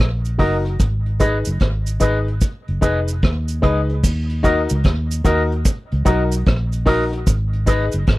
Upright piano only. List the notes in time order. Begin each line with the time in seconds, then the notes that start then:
0.39 D#4 F#4 A#4
0.65 F#4 A#4
1.20 D#4 G#4 B4
2.00 D#4 G#4 B4
2.81 D#4 G#4 B4
3.62 D#4 G#4 B4
3.89 G#4 B4
4.43 D#4 F#4 A#4
5.24 D#4 F#4 A#4
6.05 D#4 F#4 A#4
6.86 D#4 F#4 A#4
7.12 F#4 A#4
7.66 D#4 G#4 B4